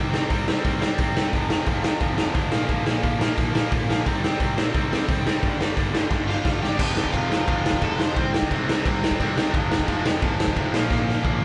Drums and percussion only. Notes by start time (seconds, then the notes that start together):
0.14 snare
0.30 kick, open hi-hat
0.48 snare
0.65 kick, open hi-hat
0.82 snare
0.98 kick, open hi-hat
1.17 snare
1.33 kick, open hi-hat
1.50 snare
1.66 kick, open hi-hat
1.84 snare
2.00 kick, open hi-hat
2.18 snare
2.34 kick, open hi-hat
2.52 snare
2.68 kick, open hi-hat
2.86 snare
3.03 kick, open hi-hat
3.21 snare
3.38 kick, open hi-hat
3.55 snare
3.72 kick, open hi-hat
3.90 snare
4.06 kick, open hi-hat
4.24 snare
4.40 kick, open hi-hat
4.58 snare
4.75 kick, open hi-hat
4.93 snare
5.08 kick, open hi-hat
5.27 snare
5.43 kick, open hi-hat
5.61 snare
5.77 kick, open hi-hat
5.95 snare
6.11 kick, snare
6.29 snare
6.45 kick, snare
6.63 snare
6.79 kick, crash
6.97 snare
7.05 kick
7.14 kick, crash
7.32 snare
7.48 kick, crash
7.66 snare
7.73 kick
7.81 kick, crash
7.99 snare
8.16 kick, crash
8.34 snare
8.42 kick
8.51 kick, crash
8.69 snare
8.86 kick, crash
9.04 snare
9.11 kick
9.20 kick, crash
9.37 snare
9.54 kick, crash
9.71 snare
9.79 kick
9.88 kick, crash
10.06 snare
10.22 kick, crash
10.40 snare
10.48 kick
10.56 kick, crash
10.74 snare
10.91 kick, snare
11.09 snare
11.24 kick, high tom